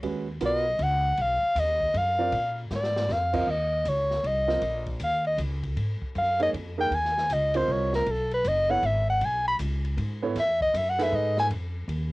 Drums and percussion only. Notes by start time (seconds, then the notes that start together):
0.03 ride
0.41 hi-hat pedal, ride
0.79 ride
1.18 ride
1.56 hi-hat pedal, ride
1.81 kick
1.94 ride
2.32 ride
2.71 snare, hi-hat pedal
2.84 snare
2.96 snare
3.09 snare
3.34 kick, crash
3.85 hi-hat pedal, ride
4.11 snare
4.24 ride
4.49 snare
4.62 ride
4.86 kick, ride
5.00 hi-hat pedal, ride
5.25 ride
5.38 hi-hat pedal, ride
5.63 kick, ride
5.77 ride
6.02 kick
6.15 hi-hat pedal, ride
6.40 ride
6.54 ride
6.92 ride
7.05 snare
7.18 snare
7.30 hi-hat pedal, ride
7.54 ride
7.93 snare
8.06 ride
8.31 ride
8.45 hi-hat pedal, ride
8.83 ride
9.21 ride
9.59 hi-hat pedal, ride
9.84 ride
9.98 ride
10.35 snare, ride
10.61 kick
10.74 hi-hat pedal, ride
10.99 snare, ride
11.37 snare
11.50 ride
11.89 ride